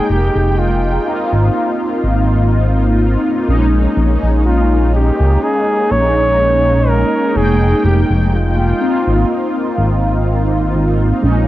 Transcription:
Already playing: G#3 A#3 D#4 G#4 G5
0.10 F1 G4
0.36 F1
0.59 F4
1.05 A#3 C4 D#4 F4
1.33 G#1
2.04 G#1
3.47 A#1 G#3 A#3 C#4 D#4
3.97 A#1
4.23 A#1
4.46 F4
4.95 G4
5.20 C#2
5.43 G#4
5.91 A#1 C#5
6.88 A#4
7.34 F1 G#3 A#3 D#4 G#4 G5
7.84 F1 G4
8.10 F1
8.33 F4
8.79 A#3 C4 D#4 F4
9.07 G#1
9.78 G#1
10.75 G#1
11.21 A#1 G#3 A#3 C#4 D#4

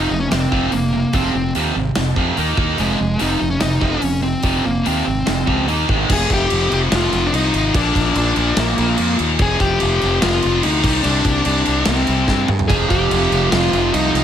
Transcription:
Already playing: D#4
0.11 F1 F2 C3
0.20 C#4
0.31 F1 F2 C3 C4, snare, open hi-hat
0.51 F1 F2 C3 F3, kick
0.71 F1 F2 C3 A#3, open hi-hat
0.93 F2 C3
1.13 F1 F2 C3 F3 C4, kick, open hi-hat
1.35 F1 F2 C3
1.55 D#2 F2 C3 F3, open hi-hat
1.76 G#1 F2 C3
1.95 F1 F2 C3, snare, open hi-hat
2.16 F2 C3 F3, kick
2.37 D#2 D#3 A#3 D#4, open hi-hat
2.57 D#2 D#3 A#3 D#4, kick
2.78 F1 F2 C3 F3 G#3, open hi-hat
2.98 F1 F2 C3
3.19 F1 F2 C3 F3 D#4, open hi-hat
3.38 F1 F2 C3
3.50 C#4
3.60 F1 F2 C3 D#4, snare, open hi-hat
3.80 F1 F2 C3 F3, kick
3.90 C#4
4.02 F1 F2 C3, open hi-hat
4.22 F2 C3 C4
4.43 F1 F2 C3 F3, kick, open hi-hat
4.64 F1 F2 C3 A#3
4.83 D#2 F2 C3 F3 C4, open hi-hat
5.05 G#1 F2 C3
5.25 F1 F2 C3, snare, open hi-hat
5.46 C#2 F2 C3 F3, kick
5.67 D#2 D#3 A#3 D#4, open hi-hat
5.88 G#1 G#2 D#3 G#3, kick
6.08 F1 F2 C3 F3, kick, crash
6.12 G#4
6.30 F1 G4, kick, crash
6.50 F1, crash
6.72 F1 G4, crash
6.92 F1 F4, snare, crash
7.12 F1, crash
7.26 D4
7.33 C2 D#4, crash
7.54 G#1, crash
7.73 A#1 A#2 F3 A#3 D4, kick, crash
7.95 A#1, kick, crash
8.15 A#1 D4, crash
8.36 A#1, crash
8.57 A#1 A#3, snare, crash
8.78 A#1, crash
8.98 F2, crash
9.19 D#2, crash
9.39 F1 F2 C3 F3 G#4, kick, crash
9.60 F1 G4, kick, crash
9.80 F1, crash
10.01 F1, crash
10.22 F1 F4, snare, crash
10.42 F1, crash
10.63 D2 D#4, crash
10.83 C2 C3 G3 C4, kick, crash
11.03 C2 D4, crash
11.25 C2, kick, crash
11.45 C2 D4, crash
11.65 C2, crash
11.85 C2 C4, snare, crash
12.07 C2, crash
12.28 G2, kick, snare
12.48 G2, mid tom
12.59 floor tom
12.68 F1 F2 C3 F3 G#4, kick, crash
12.89 F1 G4, kick, crash
13.11 F1, crash
13.32 F1, crash
13.51 F1 F4, snare, crash
13.73 F1, crash
13.93 C2 D#4, crash
14.14 C2, snare, crash

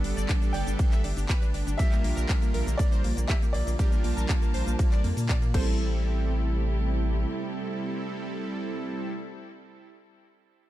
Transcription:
Already playing: D3 G3 A3 B3 D4 G4 A4 D5
0.04 G1 D4, open hi-hat
0.17 G1 D5, closed hi-hat, shaker
0.29 D4, kick, clap, closed hi-hat, ride, shaker
0.42 D4, closed hi-hat, shaker
0.53 G1 D5 G5, open hi-hat
0.67 G1 D4, closed hi-hat, shaker
0.79 D4, kick, closed hi-hat, ride, shaker
0.92 E5, clap, closed hi-hat, shaker
1.04 G1 D4, open hi-hat
1.17 G1 D4, open hi-hat, shaker
1.29 B4, kick, clap, closed hi-hat, ride, shaker
1.42 D4, closed hi-hat, shaker
1.54 G1 D4, open hi-hat
1.67 G1 D4, closed hi-hat, shaker
1.78 G3 A#3 D4 F4 G4 A#4 E5, kick, closed hi-hat, ride, shaker
1.92 A#3, clap, closed hi-hat, shaker
2.04 A#1 A#3, open hi-hat
2.17 A#1 A#4, closed hi-hat, shaker
2.29 A#3, kick, clap, closed hi-hat, ride, shaker
2.42 A#3, closed hi-hat, shaker
2.54 A#1 A#4, open hi-hat
2.67 A#1 A#3, closed hi-hat, shaker
2.77 A#3 D5, kick, closed hi-hat, ride, shaker
2.92 C5, closed hi-hat, shaker
3.04 A#1 A#3, open hi-hat
3.17 A#1 A#3, closed hi-hat, shaker
3.28 G4 E5, kick, clap, closed hi-hat, ride, shaker
3.42 A#3, closed hi-hat, shaker
3.53 A#1 A#3 D5, open hi-hat
3.67 A#1 A#3, open hi-hat, shaker
3.79 G3 D4 F4 G4 A#4 A5, kick, closed hi-hat, ride, shaker
3.92 A#3, closed hi-hat, shaker
4.04 A#1 A#3, open hi-hat
4.17 A#1 A#4, closed hi-hat, shaker
4.29 A#3, kick, clap, closed hi-hat, ride, shaker
4.42 A#3, closed hi-hat, shaker
4.54 A#1 C5, open hi-hat
4.67 A#1 A#3, closed hi-hat, shaker
4.79 A#3, kick, closed hi-hat, ride, shaker
4.92 D5, clap, closed hi-hat, shaker
5.04 F2 A#3, open hi-hat
5.17 A#2 A#3, open hi-hat, shaker
5.29 D5, kick, clap, closed hi-hat, ride, shaker
5.42 A#3, closed hi-hat, shaker
5.54 A1 C3 G3 A3 C4 E4 G4 A4 C5, kick, crash

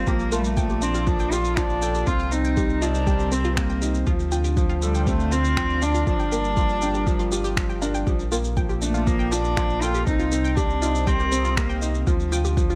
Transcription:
Already playing: F4 F5
0.07 A#1 A#2 F3 A#3 G4, kick, shaker
0.20 shaker
0.25 A4 D5
0.32 A3 A#3 F4, shaker
0.39 F3 G3
0.45 A3, shaker
0.57 F3 G5, kick, shaker
0.69 G4, shaker
0.82 C4 D4, shaker
0.95 F4, shaker
1.07 F3 D4, kick, shaker
1.19 G5, shaker
1.32 F4 G4, shaker
1.45 shaker
1.57 F3 D4 F4, finger snap, kick, shaker
1.70 shaker
1.82 A4 G5, shaker
1.95 G4, shaker
2.07 C2 C3 C4 F4, kick, shaker
2.19 C4 F4, shaker
2.31 C4 D#4, shaker
2.44 A#4 G5, shaker
2.57 G3 G4, kick, shaker
2.70 C5, shaker
2.82 D4 D#4 F4, shaker
2.95 shaker
3.07 G3 G5, kick, shaker
3.19 G4, shaker
3.32 C4, shaker
3.44 F4, shaker
3.56 G3 A#3, finger snap, kick, shaker
3.70 G5, shaker
3.82 D#4 G4, shaker
3.94 shaker
4.07 D2 D3 F3 F4, kick, shaker
4.19 shaker
4.32 D4 F4 G5, shaker
4.44 G4 C5, shaker
4.57 F3, kick, shaker
4.62 F5
4.69 F4, shaker
4.82 G3 A4, shaker
4.94 G5, shaker
5.07 A3 C4 G4, kick, shaker
5.20 shaker
5.32 C4 F4, shaker
5.45 shaker
5.57 F3 G5, finger snap, kick, shaker
5.69 G4, shaker
5.82 D4, shaker
5.95 F4, shaker
6.07 G1 F3 G3 D4, kick, shaker
6.20 G5, shaker
6.32 A#3 G4, shaker
6.45 A#4, shaker
6.57 F3 F4, kick, shaker
6.69 shaker
6.82 D4 G5, shaker
6.94 G4, shaker
7.07 F3, kick, shaker
7.19 F4, shaker
7.32 F4 G4, shaker
7.44 G4, shaker
7.57 F3, finger snap, kick, shaker
7.69 G5, shaker
7.82 D4 A#4, shaker
7.94 G5, shaker
8.07 A#1 A#2 F3 G4, kick, shaker
8.20 A4, shaker
8.32 A#3 F4 D5, shaker
8.40 A#3
8.44 shaker
8.57 F3 G5, kick, shaker
8.69 G4, shaker
8.82 A3 D4, shaker
8.94 F4, shaker
9.07 F3 A#3, kick, shaker
9.19 G5, shaker
9.31 D4 F4 G4, shaker
9.44 shaker
9.57 F3 F4, finger snap, kick, shaker
9.70 shaker
9.82 F4 A4 G5, shaker
9.95 G4, shaker
10.07 C2 C3 C4 D#4, kick, shaker
10.19 F4, shaker
10.32 C4, shaker
10.44 G5, shaker
10.57 G3 D4 G4, kick, shaker
10.70 A#4, shaker
10.82 D#4 F4, shaker
10.95 D#5, shaker
11.07 G3 C4 G5, kick, shaker
11.20 G4, shaker
11.32 C4, shaker
11.45 F4, shaker
11.57 G3 A#3, finger snap, kick, shaker
11.69 G5, shaker
11.82 D#4 G4, shaker
11.95 shaker
12.07 D2 D3 F3 F4, kick, shaker
12.20 shaker
12.25 D4
12.32 F4 G5, shaker
12.45 G4, shaker
12.57 F3, kick, shaker
12.62 C5
12.70 F4, shaker

